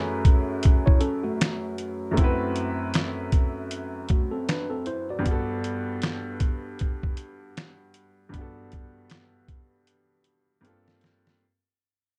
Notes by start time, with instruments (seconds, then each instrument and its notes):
Already playing: upright piano F#2 A3 C#4 E4 G#4 B4
0.25 kick, closed hi-hat
0.63 kick, closed hi-hat
0.86 tine electric piano E4 C#5, kick
1.01 tine electric piano C#4 A4, closed hi-hat
1.23 tine electric piano A3 F#4
1.41 finger snap, snare, closed hi-hat
1.78 closed hi-hat
2.11 upright piano F#2 A3
2.16 upright piano C4 E4, kick, closed hi-hat
2.21 upright piano F#4 B4
2.56 closed hi-hat
2.94 finger snap, snare, closed hi-hat
3.32 kick, closed hi-hat
3.71 closed hi-hat
4.09 tine electric piano A3 F#4, kick, closed hi-hat
4.31 tine electric piano C4 A4
4.49 tine electric piano D4 B4, finger snap, snare, closed hi-hat
4.70 tine electric piano C4 A4
4.86 tine electric piano E4 C5, closed hi-hat
5.10 tine electric piano F#4 D5
5.19 upright piano G2 B3
5.25 upright piano D4 F#4, kick, closed hi-hat
5.31 upright piano A4
5.64 closed hi-hat
6.02 finger snap, snare, closed hi-hat
6.40 kick, closed hi-hat
6.79 kick, closed hi-hat
7.03 kick
7.17 closed hi-hat
7.57 finger snap, snare, closed hi-hat
7.94 closed hi-hat
8.29 upright piano G2 B3
8.34 upright piano D4, kick, closed hi-hat
8.39 upright piano F#4 A4
8.72 kick, closed hi-hat
9.10 finger snap, snare, closed hi-hat
9.48 kick, closed hi-hat
9.87 closed hi-hat
10.24 closed hi-hat
10.61 upright piano G2 A#3 C4 D4, closed hi-hat
10.66 upright piano F4 A4
10.88 snare
11.01 snare, closed hi-hat
11.27 snare